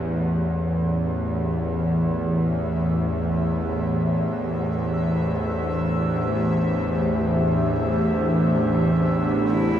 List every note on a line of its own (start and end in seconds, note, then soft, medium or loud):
0.00 9.80 A1 medium
0.00 9.80 E2 medium
0.00 9.80 A3 medium
0.00 2.07 E4 medium
0.00 9.80 G4 medium
0.00 2.08 D5 medium
0.00 9.80 E5 medium
1.29 9.80 D4 medium
2.38 9.80 C5 medium
9.49 9.80 E4 loud